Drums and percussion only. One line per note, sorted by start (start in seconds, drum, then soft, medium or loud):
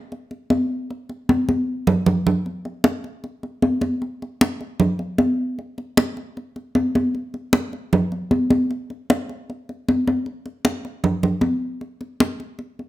0.12 high conga soft
0.31 high conga soft
0.50 high conga medium
0.90 high conga soft
1.09 high conga soft
1.29 high conga medium
1.49 high conga medium
1.87 low conga medium
2.06 low conga medium
2.27 low conga medium
2.46 high conga soft
2.65 high conga soft
2.84 high conga medium
3.04 high conga soft
3.24 high conga soft
3.43 high conga soft
3.62 high conga medium
3.81 high conga medium
4.02 high conga soft
4.22 high conga soft
4.41 high conga medium
4.61 high conga soft
4.80 high conga soft
4.80 low conga medium
4.99 high conga soft
5.18 high conga medium
5.59 high conga soft
5.78 high conga soft
5.97 high conga medium
6.17 high conga soft
6.37 high conga soft
6.56 high conga soft
6.75 high conga medium
6.95 high conga medium
7.15 high conga soft
7.34 high conga soft
7.53 high conga medium
7.73 high conga soft
7.93 high conga soft
7.93 low conga medium
8.12 high conga soft
8.31 high conga medium
8.50 high conga medium
8.71 high conga soft
8.90 high conga soft
9.10 high conga medium
9.29 high conga soft
9.50 high conga soft
9.69 high conga soft
9.88 high conga medium
10.07 high conga medium
10.26 high conga soft
10.46 high conga soft
10.65 high conga medium
10.85 high conga soft
11.04 high conga soft
11.04 low conga medium
11.23 high conga soft
11.23 low conga medium
11.41 high conga medium
11.81 high conga soft
12.01 high conga soft
12.20 high conga medium
12.40 high conga soft
12.59 high conga soft
12.79 high conga soft